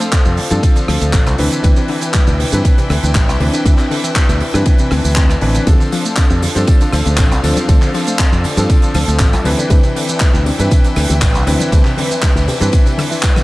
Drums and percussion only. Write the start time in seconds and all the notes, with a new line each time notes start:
0.01 closed hi-hat, shaker
0.13 kick, clap, closed hi-hat, ride, shaker
0.25 shaker
0.37 open hi-hat
0.51 closed hi-hat, shaker
0.63 kick, closed hi-hat, ride, shaker
0.76 closed hi-hat, shaker
0.88 cross-stick, open hi-hat
1.01 closed hi-hat, shaker
1.13 kick, clap, closed hi-hat, ride, shaker
1.27 cross-stick, closed hi-hat, shaker
1.38 open hi-hat
1.51 closed hi-hat, shaker
1.64 kick, closed hi-hat, ride, shaker
1.76 shaker
1.88 open hi-hat
2.02 closed hi-hat, shaker
2.14 kick, clap, closed hi-hat, ride, shaker
2.27 shaker
2.40 open hi-hat
2.52 closed hi-hat, shaker
2.65 kick, closed hi-hat, ride, shaker
2.78 closed hi-hat, shaker
2.90 cross-stick, open hi-hat
3.03 closed hi-hat, shaker
3.15 kick, clap, closed hi-hat, ride, shaker
3.29 cross-stick, closed hi-hat, shaker
3.40 open hi-hat
3.53 closed hi-hat, shaker
3.66 kick, closed hi-hat, ride, shaker
3.78 clap, closed hi-hat, shaker
3.91 open hi-hat
4.04 closed hi-hat, shaker
4.16 kick, clap, closed hi-hat, ride, shaker
4.29 closed hi-hat, shaker
4.40 open hi-hat
4.54 cross-stick, closed hi-hat, shaker
4.66 kick, closed hi-hat, ride, shaker
4.78 closed hi-hat, shaker
4.91 cross-stick, open hi-hat
5.04 open hi-hat, shaker
5.16 kick, clap, ride, shaker
5.30 cross-stick, closed hi-hat, shaker
5.41 open hi-hat
5.55 closed hi-hat, shaker
5.67 kick, closed hi-hat, ride, tambourine, high bongo, shaker
5.80 tambourine, shaker
5.92 open hi-hat, tambourine
6.05 closed hi-hat, tambourine, shaker
6.16 kick, clap, closed hi-hat, ride, tambourine, shaker
6.30 shaker
6.42 open hi-hat, tambourine, high bongo
6.56 closed hi-hat, tambourine, shaker
6.67 kick, closed hi-hat, ride, tambourine, shaker
6.81 closed hi-hat, tambourine, shaker
6.93 cross-stick, open hi-hat, tambourine
7.05 closed hi-hat, tambourine, high bongo, shaker
7.17 kick, clap, closed hi-hat, ride, tambourine, shaker
7.31 cross-stick, closed hi-hat, tambourine, shaker
7.44 open hi-hat, tambourine
7.57 closed hi-hat, tambourine, high conga, shaker
7.68 kick, closed hi-hat, ride, tambourine, high bongo, shaker
7.82 clap, tambourine, shaker
7.93 open hi-hat, tambourine, high bongo
8.07 closed hi-hat, tambourine, shaker
8.19 kick, clap, closed hi-hat, ride, tambourine, shaker
8.33 shaker
8.44 open hi-hat, tambourine, high bongo
8.57 closed hi-hat, tambourine, shaker
8.70 kick, closed hi-hat, ride, tambourine, shaker
8.82 closed hi-hat, tambourine, shaker
8.94 cross-stick, open hi-hat, tambourine, high conga
9.08 closed hi-hat, tambourine, shaker
9.19 kick, clap, closed hi-hat, ride, tambourine, shaker
9.33 cross-stick, closed hi-hat, tambourine, high conga, shaker
9.45 open hi-hat, tambourine, high conga
9.58 closed hi-hat, tambourine, high bongo, shaker
9.70 kick, closed hi-hat, ride, tambourine, high bongo, shaker
9.83 tambourine, shaker
9.96 open hi-hat, tambourine
10.09 closed hi-hat, tambourine, shaker
10.20 kick, clap, closed hi-hat, ride, tambourine, shaker
10.34 shaker
10.46 open hi-hat, tambourine, high bongo
10.60 closed hi-hat, tambourine, shaker
10.71 kick, closed hi-hat, ride, tambourine, shaker
10.84 closed hi-hat, tambourine, shaker
10.96 cross-stick, open hi-hat, tambourine
11.09 closed hi-hat, tambourine, high bongo, shaker
11.22 kick, clap, closed hi-hat, ride, tambourine, shaker
11.34 cross-stick, closed hi-hat, tambourine, shaker
11.47 open hi-hat, tambourine
11.60 closed hi-hat, tambourine, high conga, shaker
11.72 kick, closed hi-hat, ride, tambourine, high bongo, shaker
11.85 clap, tambourine, shaker
11.97 open hi-hat, tambourine, high bongo, high conga
12.11 closed hi-hat, tambourine, shaker
12.22 kick, clap, closed hi-hat, ride, tambourine, shaker
12.37 tambourine, shaker
12.48 open hi-hat, tambourine, high bongo
12.61 closed hi-hat, tambourine, shaker
12.72 kick, closed hi-hat, ride, tambourine, shaker
12.86 closed hi-hat, tambourine, shaker
12.98 cross-stick, open hi-hat, tambourine, high conga
13.11 open hi-hat, tambourine, shaker
13.23 kick, clap, ride, tambourine, shaker
13.36 cross-stick, closed hi-hat, tambourine, high conga, low conga, shaker